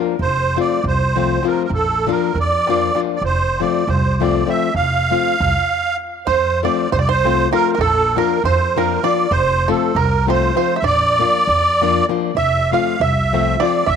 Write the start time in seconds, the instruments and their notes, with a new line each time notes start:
Already playing: nylon-string guitar F3 A#3 D4 F4
0.06 darbuka tek
0.19 upright bass F1, accordion C5, darbuka dum
0.37 darbuka tek
0.55 nylon-string guitar F3 A3 C4 F4, darbuka tek
0.60 accordion D5
0.70 darbuka tek
0.84 upright bass C2, accordion C5, darbuka dum
1.00 darbuka tek
1.16 nylon-string guitar F3 A3 C4 F4, darbuka tek
1.43 nylon-string guitar F3 A3 C4 F4, darbuka tek
1.47 accordion A#4
1.64 accordion A#4
1.69 upright bass A#1, darbuka dum
1.74 accordion A4
1.88 darbuka tek
2.07 nylon-string guitar F3 A#3 D4 F4, darbuka tek
2.11 accordion A#4
2.21 darbuka tek
2.34 upright bass F2, darbuka dum
2.40 accordion D5
2.52 darbuka tek
2.67 nylon-string guitar F3 A#3 D4 F4, darbuka tek
2.95 nylon-string guitar F3 A#3 D4 F4, darbuka tek
3.10 darbuka tek
3.16 accordion D5
3.21 upright bass F1, accordion C5, darbuka dum
3.41 darbuka tek
3.59 nylon-string guitar F3 A3 C4 F4, accordion D5, darbuka tek
3.74 darbuka tek
3.87 upright bass C2, accordion C5, darbuka dum
4.20 nylon-string guitar F3 A3 C4 F4, accordion D5, darbuka tek
4.46 nylon-string guitar F3 A3 C4 F4, accordion E5, darbuka tek
4.62 darbuka tek
4.75 upright bass F1, accordion F5, darbuka dum
4.94 darbuka tek
5.10 nylon-string guitar F3 A3 C4 F4
5.27 darbuka tek
5.40 upright bass C2, darbuka dum
6.27 upright bass F2, accordion C5, five-string banjo C5, darbuka dum
6.47 darbuka tek
6.63 nylon-string guitar F3 A3 C4 F4, accordion D5, five-string banjo D5, darbuka tek
6.80 darbuka tek
6.92 upright bass C2, accordion C5, five-string banjo C5, darbuka dum
6.99 five-string banjo D5, accordion D5
7.09 five-string banjo C5, accordion C5, darbuka tek
7.24 nylon-string guitar F3 A3 C4 F4, darbuka tek
7.51 nylon-string guitar F3 A3 C4 F4, five-string banjo A#4, accordion A#4, darbuka tek
7.72 accordion A#4, five-string banjo A#4
7.78 upright bass A#1, accordion A4, five-string banjo A4, darbuka dum
7.98 darbuka tek
8.16 nylon-string guitar F3 A#3 D4 F4, accordion A#4, five-string banjo A#4, darbuka tek
8.31 darbuka tek
8.44 upright bass F2, accordion C5, five-string banjo C5, darbuka dum
8.63 darbuka tek
8.76 nylon-string guitar F3 A#3 D4 F4, accordion A#4, five-string banjo A#4, darbuka tek
9.03 nylon-string guitar F3 A#3 D4 F4, accordion D5, five-string banjo D5, darbuka tek
9.31 upright bass F1, accordion C5, five-string banjo C5, darbuka dum
9.50 darbuka tek
9.68 nylon-string guitar F3 A3 C4 F4, five-string banjo A4, accordion A4
9.83 darbuka tek
9.95 upright bass C2, five-string banjo A#4, accordion A#4, darbuka dum
10.14 darbuka tek
10.27 nylon-string guitar F3 A3 C4 F4, five-string banjo C5, darbuka tek
10.32 accordion C5
10.55 nylon-string guitar F3 A3 C4 F4, five-string banjo C5, darbuka tek
10.59 accordion C5
10.71 darbuka tek
10.76 five-string banjo E5, accordion E5
10.82 upright bass A#1, five-string banjo D5, accordion D5, darbuka dum
11.03 darbuka tek
11.19 nylon-string guitar F3 A#3 D4 F4, darbuka tek
11.35 darbuka tek
11.47 upright bass F2, darbuka dum
11.65 darbuka tek
11.81 nylon-string guitar F3 A#3 D4 F4, darbuka tek
11.95 darbuka tek
12.09 nylon-string guitar F3 A#3 D4 F4, darbuka tek
12.23 darbuka tek
12.35 upright bass F1, five-string banjo E5, accordion E5, darbuka dum
12.71 nylon-string guitar F3 A3 C4 F4, accordion F5, five-string banjo F5, darbuka tek
12.88 darbuka tek
13.00 upright bass C2, five-string banjo E5, accordion E5, darbuka dum
13.18 darbuka tek
13.33 nylon-string guitar F3 A3 C4 F4, darbuka tek
13.60 nylon-string guitar F3 A3 C4 F4, five-string banjo D5, accordion D5, darbuka tek
13.74 darbuka tek
13.86 upright bass A#1, five-string banjo E5, accordion E5, darbuka dum